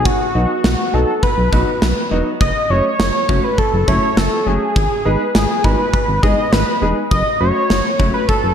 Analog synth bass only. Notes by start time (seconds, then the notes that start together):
Already playing: B1
0.35 B1
0.64 B1
0.94 B1
1.38 B1
1.53 B1
1.82 B1
2.11 E1
2.41 F#1
2.70 F#1
2.99 F#1
3.29 F#1
3.73 F#1
3.88 F#1
4.17 F#1
4.47 F#1
4.76 G#1
5.05 G#1
5.35 G#1
5.64 G#1
6.08 G#1
6.23 G#1
6.52 G#1
6.82 E1
7.11 F#1
7.41 F#1
7.70 F#1
8.00 F#1
8.44 F#1